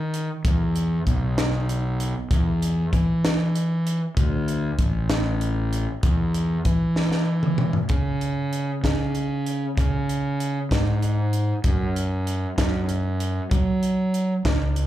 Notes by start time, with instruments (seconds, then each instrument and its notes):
Already playing: fingered electric bass D#3
0.14 closed hi-hat
0.45 fingered electric bass E2, kick, closed hi-hat
0.76 closed hi-hat
1.07 fingered electric bass B1, kick, closed hi-hat
1.38 snare, closed hi-hat
1.69 closed hi-hat
2.00 closed hi-hat
2.31 fingered electric bass E2, kick, closed hi-hat
2.62 closed hi-hat
2.93 fingered electric bass E3, kick, closed hi-hat
3.25 snare, closed hi-hat
3.55 closed hi-hat
3.87 closed hi-hat
4.17 fingered electric bass D2, kick, closed hi-hat
4.48 closed hi-hat
4.79 fingered electric bass A1, kick, closed hi-hat
5.10 snare, closed hi-hat
5.41 closed hi-hat
5.73 closed hi-hat
6.03 fingered electric bass E2, kick, closed hi-hat
6.34 closed hi-hat
6.65 fingered electric bass E3, kick, closed hi-hat
6.96 snare
7.12 snare
7.43 mid tom
7.58 mid tom
7.73 floor tom
7.89 fingered electric bass C#3, kick, closed hi-hat
8.21 closed hi-hat
8.53 closed hi-hat
8.84 fingered electric bass C#3, kick, snare, closed hi-hat
9.15 closed hi-hat
9.46 closed hi-hat
9.78 fingered electric bass C#3, kick, closed hi-hat
10.09 closed hi-hat
10.40 closed hi-hat
10.71 fingered electric bass G#2, kick, snare, closed hi-hat
11.03 closed hi-hat
11.33 closed hi-hat
11.64 fingered electric bass F#2, kick, closed hi-hat
11.96 closed hi-hat
12.27 closed hi-hat
12.58 fingered electric bass F#2, kick, snare, closed hi-hat
12.89 closed hi-hat
13.20 closed hi-hat
13.51 fingered electric bass F#3, kick, closed hi-hat
13.83 closed hi-hat
14.14 closed hi-hat
14.45 fingered electric bass C#2, kick, snare, closed hi-hat
14.76 closed hi-hat